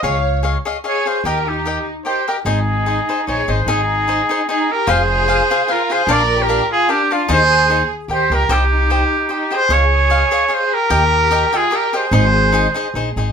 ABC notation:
X:1
M:3/4
L:1/16
Q:"Swing" 1/4=149
K:Ab
V:1 name="Cavaquinho"
[Adef]2 z2 [Adef]2 [Adef]2 [Adef]2 [Adef]2 | [GBeg]2 z2 [GBeg]2 z2 [GBeg]2 [GBeg]2 | [EAce]2 z2 [EAce]2 [EAce]2 [EAce]2 [EAce]2 | [EAce]2 z2 [EAce]2 [EAce]2 [EAce]2 z2 |
[FAcf]2 z2 [FAcf]2 [FAcf]2 [FAcf]2 [FAcf]2 | [=DB=df]2 z2 [DBdf]2 z2 [DBdf]2 [DBdf]2 | [EAce]2 z2 [EAce]2 z2 [GBeg]2 [GBeg]2 | [Gceg]2 z2 [Gceg]2 z2 [Gceg]2 [Gceg]2 |
[Adef]2 z2 [Adef]2 [Adef]2 [Adef]2 z2 | [GBeg]2 z2 [GBeg]2 [GBeg]2 [GBeg]2 [GBeg]2 | [EAce]2 z2 [EAce]2 [EAce]2 [EAce]2 [EAce]2 |]
V:2 name="Trumpet"
f4 z4 d2 c2 | B2 G4 z2 c2 B2 | A8 d2 c2 | A8 A2 B2 |
c8 B2 c2 | =d3 B3 A2 G2 F2 | c6 z2 c2 B2 | G8 G2 c2 |
d8 c2 B2- | B6 A2 B2 c2- | c8- c2 z2 |]
V:3 name="Violin section"
d4 z4 A2 A2 | G2 E4 z2 G2 G2 | E8 A2 A2 | E8 E2 G2 |
A8 F2 A2 | B3 G3 F2 =D2 D2 | A6 z2 G2 G2 | E8 E2 A2 |
A8 A2 G2- | G6 F2 G2 A2- | A8- A2 z2 |]
V:4 name="Upright bass" clef=bass
D,,8 z4 | E,,8 z4 | A,,,8 B,,,2 A,,,2 | A,,,8 z4 |
F,,,8 z4 | B,,,8 z4 | E,,8 E,,2 D,,2 | C,,8 z4 |
D,,8 z4 | E,,8 z4 | A,,,8 B,,,2 A,,,2 |]